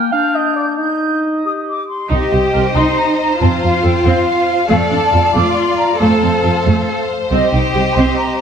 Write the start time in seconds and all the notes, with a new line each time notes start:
Already playing: A#3 G5 F6
0.12 D4 F5 G6
0.35 D#5
0.56 D5
0.78 D#4 D#5 G6
1.45 G4 D#6
1.68 D6
1.89 C6
2.09 C2 D#4 G4 C5 D#5
2.32 C2 G4 G5
2.54 C2 A#4
2.75 C2 D#4 C6
2.98 A#5
3.40 F2 C4 F4 F5 A5
3.62 F2 F4 F5
3.83 F2 A4 G5
4.05 F2 C4 F5
4.69 F2 A3 A4 D5 F5
4.91 F2 D4 A5
5.12 F2 F4
5.34 F2 A3 F4 D6
5.56 C6
5.78 A#5
5.98 F2 A3 A4 C5 F5 A5
6.22 F2 C4
6.44 F2 F4
6.65 F2 A3
7.30 C2 C4 G4 D#5
7.51 C2 D#4 G5
7.75 C2 G4
7.95 C2 C4 C6
8.17 A#5